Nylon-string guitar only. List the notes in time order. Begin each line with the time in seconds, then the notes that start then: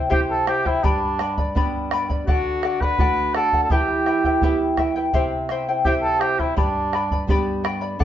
Already playing: C3
0.11 C4 E4 G4
0.83 G2
1.55 G3 B3 D4
2.27 D3
2.98 A3 D4 F#4
3.70 E3
4.42 B3 E4 G4
5.13 C3
5.85 C4 E4 G4
6.56 G2
7.27 G3 B3 D4
7.99 D3